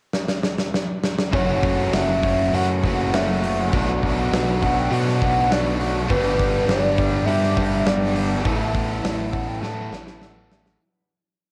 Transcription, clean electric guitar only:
1.32 F#2 C#3 E3 A3 C#4 F#4
2.23 E3 A3 C#4 F#4
2.52 F#2 C#3 E3 A3 C#4 F#4
3.12 E3 A3 C#4 F#4
3.42 E3 A3 C#4 F#4
3.72 B2 F#3 A3 D4 F#4
4.61 A3 D4 F#4
4.90 B2 F#3 A3 D4 F#4
5.50 F#3 A3 D4 F#4
5.79 A3 D4 F#4
6.09 G2 D3 G3 B3 D4 G4
6.98 G3 B3 D4 G4
7.27 G2 D3 G3 B3 D4 G4
7.85 G3 B3 D4 G4
8.16 G3 B3 D4 G4
8.43 A2 E3 B3 E4 A4
9.32 B3 E4 A4
9.60 A2 E3 B3 E4 A4
10.20 E3 B3 E4 A4
10.50 B3 E4 A4

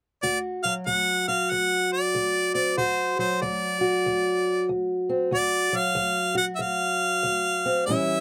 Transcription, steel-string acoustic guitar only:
0.23 D2 F#4
0.65 F#3
0.87 D2
1.28 F#4
1.51 D2
2.15 D2
2.55 C4
2.77 D2 F#4
3.19 F#3
3.42 D2
3.81 F#4
4.06 D2
4.69 D2
5.09 C4
5.31 D2 F#4
5.73 F#3
5.95 D2
6.35 F#4
6.59 D2
7.23 D2
7.66 C4
7.88 A2 E3 G3 C#4 E4

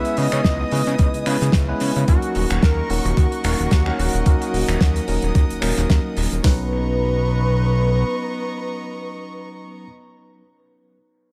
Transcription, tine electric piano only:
Already playing: G#3 B3 C#4 E4 B4
0.71 G#3 B3 C#4 E4 B4
1.26 G#3 B3 C#4 E4 B4
1.68 G#3 B3 C#4 E4 B4
2.07 F#3 A#3 C#4 D#4 A#4
2.89 F#3 A#3 C#4 D#4 A#4
3.44 F#3 A#3 C#4 D#4 A#4
3.87 F#3 A#3 C#4 D#4 A#4
4.25 F#3 A#3 C#4 D#4 A#4
5.07 F#3 A#3 C#4 D#4 A#4
5.61 F#3 A#3 C#4 D#4 A#4
6.43 F#3 B3 C#4 D#4 B4

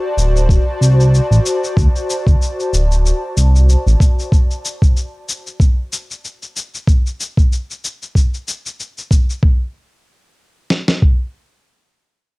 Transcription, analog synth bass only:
0.17 D1
0.81 C2
1.31 A1
1.77 D2
2.27 D2
2.73 D1
3.37 C2
3.87 A1

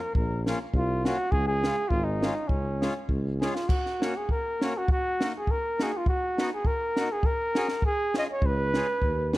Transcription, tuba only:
0.15 A#1
0.73 C2
1.32 C#2
1.90 G#1
2.49 C#2
3.09 C#2
8.42 C#2
9.02 D#2

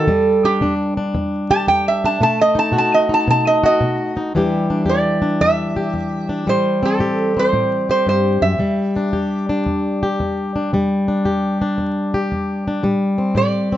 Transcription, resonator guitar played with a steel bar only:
Already playing: A4
0.45 G4
1.51 A5
1.68 G5
1.88 E5
2.05 A5
2.23 A5
2.41 D#5
2.59 A5
2.78 A5
2.94 D#5
3.14 A5
3.30 A5
3.47 D#5
3.66 D#5
4.89 D5
5.41 E5
6.49 C5
6.85 A4
7.39 C5
7.91 C5
8.09 C5
8.42 E5
13.37 D5

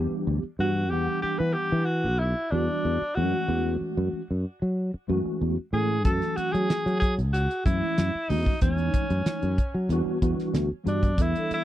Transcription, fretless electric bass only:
0.11 muted fretless electric bass stroke
0.27 D2
0.43 muted fretless electric bass stroke
0.59 G2
0.91 E2
1.24 muted fretless electric bass stroke
1.40 E3
1.72 E3
2.04 B1
2.52 E2
2.85 E2
3.02 muted fretless electric bass stroke
3.17 F#2
3.48 E2
3.81 muted fretless electric bass stroke
3.97 F#2
4.13 muted fretless electric bass stroke
4.31 F#2
4.62 F#3
4.94 muted fretless electric bass stroke
5.09 F#2
5.26 muted fretless electric bass stroke
5.41 E2
5.58 muted fretless electric bass stroke
5.73 A2
6.05 F#2
6.37 muted fretless electric bass stroke
6.54 F#3
6.86 F#3
7.18 C#2
7.66 F#2
7.99 F#2
8.15 muted fretless electric bass stroke
8.30 E2
8.62 E2
9.10 F#2
9.26 muted fretless electric bass stroke
9.43 F#2
9.75 F#3
9.89 E2
10.06 muted fretless electric bass stroke
10.22 E2
10.38 muted fretless electric bass stroke
10.54 D2
10.71 muted fretless electric bass stroke
10.86 G2
11.18 E2
11.51 muted fretless electric bass stroke

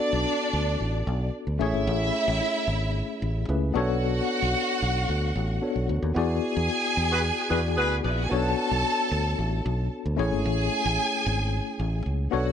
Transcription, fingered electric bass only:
0.13 B1
0.53 D2
0.80 A1
1.07 B1
1.47 D2
1.61 A1
1.74 G#1
1.87 A1
2.28 A1
2.68 G#1
3.22 A1
3.49 C#2
3.75 B1
4.42 B1
4.82 B1
5.09 D2
5.36 A1
5.76 B1
5.89 D2
6.02 D#2
6.16 E2
6.57 E2
6.97 E2
7.51 E2
7.78 D2
8.04 A#1
8.31 B1
8.71 B1
9.11 D2
9.39 A1
9.66 B1
10.06 D2
10.19 A1
10.32 G#1
10.46 A1
10.85 A1
11.26 G#1
11.79 A1
12.06 C#2
12.33 B1

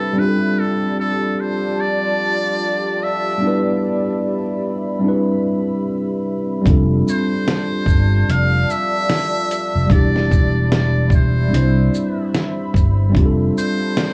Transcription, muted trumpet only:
Already playing: A4
0.19 B4
0.59 A4
1.00 A4
1.40 C5
1.80 D5
3.03 E5
7.10 C5
8.31 F5
8.71 E5
9.92 D5
10.74 D5
11.14 C5
13.58 C5

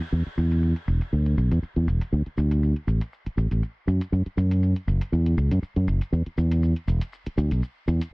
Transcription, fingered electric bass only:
0.12 E2
0.26 muted fingered electric bass stroke
0.37 E2
0.88 E1
1.13 D2
1.37 B1
1.51 E2
1.62 muted fingered electric bass stroke
1.76 E2
1.87 E1
2.12 D2
2.26 muted fingered electric bass stroke
2.37 D2
2.87 A1
3.26 muted fingered electric bass stroke
3.37 A1
3.51 A1
3.87 F#2
4.12 F#2
4.26 muted fingered electric bass stroke
4.37 F#2
4.87 F#1
5.12 E2
5.37 C#2
5.51 F#2
5.62 muted fingered electric bass stroke
5.76 F#2
5.87 F#1
6.12 E2
6.26 muted fingered electric bass stroke
6.38 E2
6.88 E1
7.26 muted fingered electric bass stroke
7.37 D2
7.51 B1
7.88 E2

